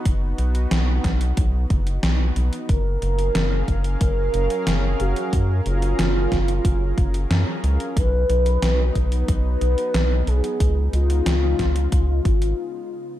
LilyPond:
<<
  \new Staff \with { instrumentName = "Analog synth lead" } { \time 4/4 \key fis \major \tempo 4 = 91 r1 | ais'2 ais'4. fis'8~ | fis'8 eis'2.~ eis'8 | b'2 b'4. gis'8~ |
gis'8 eis'2.~ eis'8 | }
  \new Staff \with { instrumentName = "Analog synth pad" } { \time 4/4 \key fis \major <b dis' fis'>1 | <fis cis' gis' ais' eis''>1~ | <fis cis' gis' ais' eis''>1 | <fis b dis'>1 |
<cis gis dis' eis'>2. r4 | }
  \new Staff \with { instrumentName = "Analog synth bass" } { \clef bass \time 4/4 \key fis \major fis,,8 b,,8 b,,8 b,,8 b,,8 fis,,8 b,,8 b,,8 | fis,,8 fis,,8 fis,,8 fis,,8 fis,,8 fis,,8 fis,,8 fis,,8 | fis,8 fis,,8 fis,,8 fis,,8 fis,,8 fis,,8 fis,8 cis,8 | b,,8 b,,8 b,,8 b,,8 b,,8 b,,8 b,,8 b,,8 |
cis,8 cis,8 cis,8 cis,8 cis,8 gis,,8 r4 | }
  \new DrumStaff \with { instrumentName = "Drums" } \drummode { \time 4/4 <hh bd>8 hh16 hh16 <hh sn>8 <hh bd sn>16 hh16 <hh bd>8 <hh bd>16 hh16 <hh sn>8 hh16 hh16 | <hh bd>8 hh16 hh16 <hh sn>8 <hh bd>16 hh16 <hh bd>8 hh16 hh16 <hh sn>8 hh16 hh16 | <hh bd>8 hh16 hh16 <hh sn>8 <hh bd sn>16 hh16 <hh bd>8 <hh bd>16 hh16 <hh sn>8 hh16 hh16 | <hh bd>8 hh16 hh16 <hh sn>8 <hh bd>16 hh16 <hh bd>8 hh16 hh16 <hh sn>8 hh16 hh16 |
<hh bd>8 hh16 hh16 <hh sn>8 <hh bd sn>16 hh16 <hh bd>8 <hh bd>16 hh16 r4 | }
>>